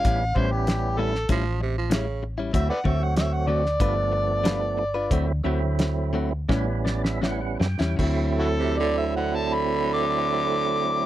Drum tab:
CC |----------------|----------------|----------------|x---------------|
HH |x---x---x---x---|x---x---x---x---|x---x-----------|----------------|
SD |----o--o----o---|----o--o----o---|----o---o-ooo-oo|----------------|
BD |o-o-----o-------|o-o-----o-------|o-------o-------|o---------------|